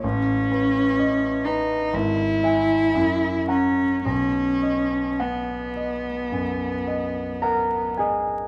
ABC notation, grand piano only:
X:1
M:4/4
L:1/8
Q:1/4=54
K:B
V:1 name="Grand piano"
=A,,, B d B G,,, [eg] F,, [f^a] | B,,, d f d F,, d [Afa] [Gdg] |]